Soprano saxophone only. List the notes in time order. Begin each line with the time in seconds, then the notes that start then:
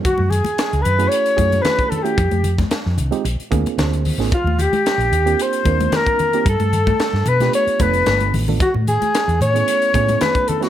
0.05 F#4
0.30 G#4
0.82 B4
1.08 C#5
1.62 B4
1.89 A4
2.03 G4
4.34 F4
4.62 G4
5.42 C5
5.96 A#4
6.49 A4
7.28 B4
7.55 C#5
7.82 B4
8.62 F#4
8.89 G#4
9.42 C#5
10.22 B4
10.48 A4
10.63 F#4